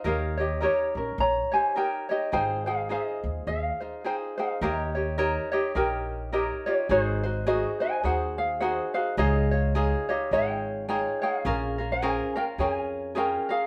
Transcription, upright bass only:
X:1
M:4/4
L:1/8
Q:"Swing" 1/4=105
K:Ab
V:1 name="Upright bass" clef=bass
E,,3 B,,, B,,, z3 | A,,,3 E,, E,, z3 | E,,4 B,,,4 | A,,,4 E,,4 |
D,,4 A,,,4 | B,,,4 F,,4 |]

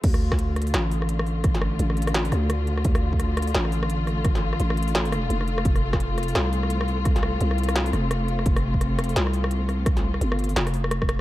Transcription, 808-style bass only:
X:1
M:4/4
L:1/8
Q:"Swing 16ths" 1/4=171
K:Dm
V:1 name="808-style bass" clef=bass
D,,4 A,,,4- | A,,,2 A,,,3 D,,3 | D,,4 A,,,4- | A,,,2 A,,,4 F,,,2 |
F,,,4 C,,4- | C,,2 C,,3 F,,,3 | F,,,4 C,,4- | C,,2 G,,,2 F,,,4 |]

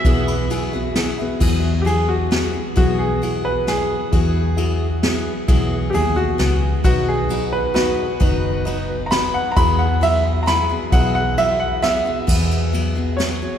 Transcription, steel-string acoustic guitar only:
X:1
M:3/4
L:1/8
Q:1/4=132
K:E
V:1 name="Steel-string acoustic guitar"
[E,F,B,FG]2 [F,B,FG] [B,FG] [F,B,FG] [B,FG] | [E,F,B,FG]2 [F,B,FG]2 [F,B,FG] [B,FG] | [E,F,B,FG]2 [F,B,FG]2 [F,B,FG]2 | [E,F,B,FG]2 [F,B,FG]2 [F,B,FG]2 |
[E,F,B,FG]2 [F,B,FG] [B,FG] [F,B,FG]2 | [B,,D,F,B,DB]2 [F,B,DB]2 [F,B,DB]2 | [B,,D,F,B,DB]2 [F,B,DB]2 [F,B,DB]2 | [E,F,B,FG]2 [F,B,FG]2 [F,B,FG] [B,FG] |
[E,F,B,FG]2 [F,B,FG]2 [F,B,FG] [B,FG] | [E,F,B,FG]2 [F,B,FG] [B,FG] [F,B,FG] [B,FG] |]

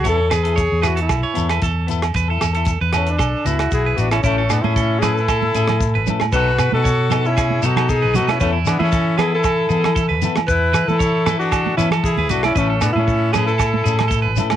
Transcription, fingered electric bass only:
X:1
M:4/4
L:1/16
Q:1/4=115
K:A
V:1 name="Fingered electric bass" clef=bass
E,,2 E,,3 E,,3 B,,, z E,,2 E,,4 | E,,2 E,,3 E,,3 B,,, z C,,2 B,,,2 A,,,2 | A,,,2 A,, A,,6- A,, A,,3 A,,, A,,2 | B,,,2 B,, B,,6- B,, B,,3 B,,, B,,2 |
E,,2 E, E,6- E, E,3 E,, E,2 | E,,2 E, E,6- E, E,3 E,, B,,,2 | A,,,2 A,, A,,6- A,, A,,3 A,,, A,,2 |]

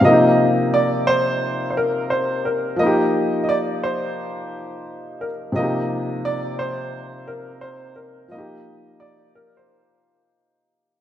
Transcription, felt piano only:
X:1
M:4/4
L:1/8
Q:"Swing 16ths" 1/4=87
K:Cm
V:1 name="Felt piano"
[C,F,B,EG]8 | [F,B,EG]8 | [C,F,B,EG]8 | [F,B,EG]8 |]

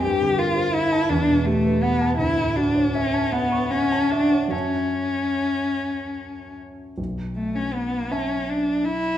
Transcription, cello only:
X:1
M:6/8
L:1/16
Q:3/8=53
K:Bm
V:1 name="Cello"
G2 =F2 E2 D2 A,2 B,2 | E2 D2 C2 B,2 C2 D2 | C8- C2 z2 | z2 A, C B,2 C2 D2 E2 |]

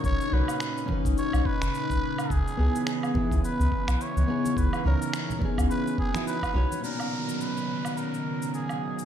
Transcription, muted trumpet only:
X:1
M:4/4
L:1/8
Q:"Swing 16ths" 1/4=106
K:B
V:1 name="Muted trumpet"
c B2 z c B3 | G2 G2 B2 c2 | B A2 z B G B2 | A2 B2 A2 G2 |]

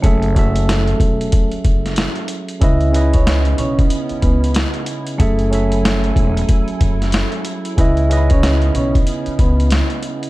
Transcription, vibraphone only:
X:1
M:4/4
L:1/16
Q:"Swing 16ths" 1/4=93
K:C#m
V:1 name="Vibraphone"
[A,A]8- [A,A] z6 z | [Ee]3 [Cc] z2 [Cc] z3 [B,B]2 z4 | [A,A]8- [A,A] z6 z | [Ee]3 [Cc] z2 [Cc] z3 [B,B]2 z4 |]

